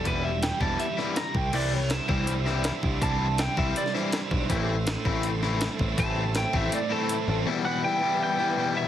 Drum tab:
CC |----------------|x---------------|----------------|----------------|
HH |x---x---x---x---|----x---x---x---|x---x---x---x---|x---x---x---x---|
SD |----o-----o-o---|----o-----o-o---|----o----oo-o---|----o-----o-o---|
BD |o-----o-------o-|------o-------o-|o-----o-------o-|o-----o-------o-|

CC |----------------|----------------|
HH |x---x---x---x---|----------------|
SD |----o-----------|----------------|
BD |o-----o---------|----------------|